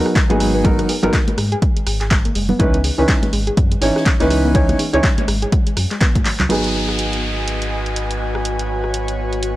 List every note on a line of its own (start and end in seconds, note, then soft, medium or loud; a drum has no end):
0.00 0.13 F#3 medium
0.00 0.13 B3 medium
0.00 0.14 D#4 medium
0.00 0.14 A#4 medium
0.06 0.10 G#4 medium
0.06 cross-stick medium
0.15 0.25 G#3 medium
0.15 kick loud
0.15 snare loud
0.15 clap loud
0.15 closed hi-hat medium
0.15 ride medium
0.30 0.83 G#1 loud
0.30 0.62 F#3 medium
0.30 0.34 A#3 loud
0.30 0.62 B3 medium
0.30 0.62 D#4 medium
0.30 0.62 G#4 loud
0.30 closed hi-hat soft
0.30 ride soft
0.40 0.46 G#3 loud
0.40 cross-stick medium
0.40 open hi-hat medium
0.54 0.61 B3 loud
0.64 0.87 F#3 medium
0.64 0.74 G#3 medium
0.64 0.87 B3 medium
0.64 0.87 D#4 medium
0.64 0.87 A#4 loud
0.64 kick loud
0.64 closed hi-hat medium
0.64 ride medium
0.79 0.83 B3 medium
0.79 cross-stick medium
0.79 closed hi-hat medium
0.79 ride soft
0.89 0.93 G#4 medium
0.89 open hi-hat loud
0.89 ride medium
1.03 1.10 G#1 medium
1.03 1.15 F#3 medium
1.03 1.15 B3 medium
1.03 1.15 D#4 medium
1.03 1.08 G#4 medium
1.03 1.15 A#4 loud
1.03 closed hi-hat soft
1.13 1.22 G#3 medium
1.13 kick loud
1.13 snare loud
1.13 clap loud
1.13 closed hi-hat medium
1.13 ride medium
1.28 1.32 G#3 medium
1.28 closed hi-hat medium
1.28 high conga medium
1.37 1.55 G#2 medium
1.37 1.44 G#3 loud
1.37 cross-stick medium
1.37 open hi-hat medium
1.37 ride medium
1.52 1.56 G#4 loud
1.52 closed hi-hat soft
1.52 ride soft
1.62 1.68 G#3 medium
1.62 kick loud
1.62 closed hi-hat medium
1.62 ride medium
1.76 1.81 G#3 medium
1.76 closed hi-hat medium
1.86 2.30 G#1 medium
1.86 1.90 G#4 medium
1.86 cross-stick medium
1.86 open hi-hat loud
1.86 ride medium
2.01 2.05 G#4 medium
2.01 snare soft
2.01 clap soft
2.01 closed hi-hat soft
2.11 2.20 G#3 medium
2.11 kick loud
2.11 snare loud
2.11 clap loud
2.11 closed hi-hat medium
2.25 2.29 A#3 medium
2.25 closed hi-hat medium
2.35 2.53 F#1 loud
2.35 2.41 G#3 loud
2.35 open hi-hat medium
2.35 ride medium
2.49 2.56 B3 loud
2.49 low conga medium
2.59 2.90 C#2 loud
2.59 2.75 E3 medium
2.59 2.69 G#3 medium
2.59 2.75 C#4 medium
2.59 2.75 D#4 medium
2.59 2.75 B4 loud
2.59 kick loud
2.59 closed hi-hat medium
2.59 ride medium
2.74 2.78 B3 medium
2.74 closed hi-hat medium
2.84 2.88 G#4 medium
2.84 open hi-hat loud
2.84 ride medium
2.98 3.05 C#2 medium
2.98 3.19 E3 medium
2.98 3.19 C#4 medium
2.98 3.20 D#4 medium
2.98 3.03 G#4 medium
2.98 3.20 B4 medium
3.08 3.17 G#3 medium
3.08 kick loud
3.08 snare loud
3.08 clap loud
3.08 closed hi-hat medium
3.22 3.27 G#3 medium
3.22 snare soft
3.22 closed hi-hat medium
3.22 high conga medium
3.33 3.50 G#1 medium
3.33 3.39 G#3 loud
3.33 open hi-hat medium
3.33 ride medium
3.47 3.51 G#4 loud
3.47 closed hi-hat soft
3.57 3.75 F#2 medium
3.57 kick loud
3.57 closed hi-hat medium
3.57 ride medium
3.72 3.76 G#3 medium
3.72 closed hi-hat medium
3.81 3.91 G#1 loud
3.81 4.04 E3 medium
3.81 4.04 C#4 medium
3.81 4.04 D#4 medium
3.81 3.85 G#4 medium
3.81 4.04 C#5 medium
3.81 snare loud
3.81 open hi-hat loud
3.81 ride medium
3.96 4.00 G#4 medium
3.96 cross-stick medium
3.96 snare medium
3.96 ride medium
4.06 4.15 G#3 medium
4.06 kick loud
4.06 snare loud
4.06 clap loud
4.06 closed hi-hat medium
4.20 4.74 C#2 loud
4.20 4.52 E3 loud
4.20 4.25 A#3 loud
4.20 4.52 C#4 medium
4.20 4.53 D#4 medium
4.20 4.53 B4 loud
4.20 snare loud
4.20 closed hi-hat medium
4.20 ride medium
4.30 4.36 G#3 loud
4.30 cross-stick medium
4.30 open hi-hat medium
4.45 4.51 B3 loud
4.54 4.77 E3 medium
4.54 4.64 G#3 medium
4.54 4.77 C#4 medium
4.54 4.77 D#4 medium
4.54 4.77 C#5 loud
4.54 kick loud
4.54 closed hi-hat medium
4.54 ride medium
4.69 4.73 B3 medium
4.69 cross-stick medium
4.69 closed hi-hat medium
4.69 ride soft
4.69 high conga medium
4.79 4.83 G#4 medium
4.79 open hi-hat loud
4.79 ride medium
4.93 5.00 C#2 medium
4.93 5.05 E3 medium
4.93 5.05 C#4 medium
4.93 5.05 D#4 medium
4.93 4.98 G#4 medium
4.93 5.05 C#5 loud
4.93 closed hi-hat soft
5.04 5.13 G#3 medium
5.04 kick loud
5.04 snare loud
5.04 clap loud
5.04 closed hi-hat medium
5.18 5.22 G#3 medium
5.18 closed hi-hat medium
5.18 high conga medium
5.28 5.45 G#1 medium
5.28 5.34 G#3 loud
5.28 cross-stick medium
5.28 open hi-hat medium
5.28 ride medium
5.42 5.47 G#4 loud
5.42 closed hi-hat soft
5.42 ride soft
5.52 5.58 G#3 medium
5.52 kick loud
5.52 closed hi-hat medium
5.52 ride medium
5.67 5.71 G#3 medium
5.67 closed hi-hat medium
5.77 5.86 F#2 medium
5.77 5.86 F#3 medium
5.77 cross-stick medium
5.77 open hi-hat loud
5.77 ride medium
5.91 5.95 G#3 loud
5.91 snare soft
5.91 clap soft
5.91 closed hi-hat soft
6.01 6.07 B3 medium
6.01 kick loud
6.01 snare loud
6.01 clap loud
6.01 closed hi-hat medium
6.01 ride medium
6.15 6.20 G#2 loud
6.15 kick medium
6.15 closed hi-hat medium
6.15 high conga medium
6.25 6.29 F#3 medium
6.25 clap medium
6.25 open hi-hat medium
6.25 ride medium
6.40 6.46 C#2 medium
6.40 6.44 F#3 medium
6.40 clap loud
6.40 closed hi-hat soft
6.40 low conga medium
6.49 9.56 G#1 medium
6.49 9.56 F#3 medium
6.49 9.56 B3 medium
6.49 9.56 D#4 medium
6.49 9.56 F#4 medium
6.49 9.56 G#4 medium
6.49 9.56 B4 medium
6.49 8.43 D#5 medium
6.49 9.56 G#5 medium
6.49 closed hi-hat medium
6.49 crash medium
6.49 downlifter medium
6.59 9.56 F#4 medium
6.64 closed hi-hat soft
6.78 9.56 D#5 medium
6.89 cross-stick medium
6.99 closed hi-hat medium
7.13 closed hi-hat soft
7.38 9.56 G#5 medium
7.48 closed hi-hat medium
7.62 closed hi-hat soft
7.86 closed hi-hat soft
7.96 closed hi-hat medium
8.11 closed hi-hat soft
8.35 cross-stick medium
8.45 9.56 C#5 medium
8.45 closed hi-hat medium
8.59 closed hi-hat soft
8.84 cross-stick medium
8.94 closed hi-hat medium
9.08 closed hi-hat soft
9.33 closed hi-hat soft
9.43 closed hi-hat medium